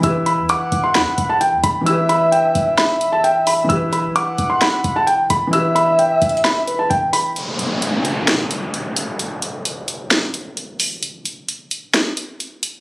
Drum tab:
HH |x--x--x--x--x--x--x--x--|x--x--x--x--x--x--x--o--|x--x--x--x--x--x--x--x--|x--x--x--xxxx--x--x--o--|
SD |------------o-----------|------------o-----------|------------o-----------|------------o-----------|

HH |x--x--x--x--x--x--x--x--|x--x--x--x--x--x--x--o--|x--x--x--x--x--x--x--x--|
SD |------------o-----------|------------o-----------|------------o-----------|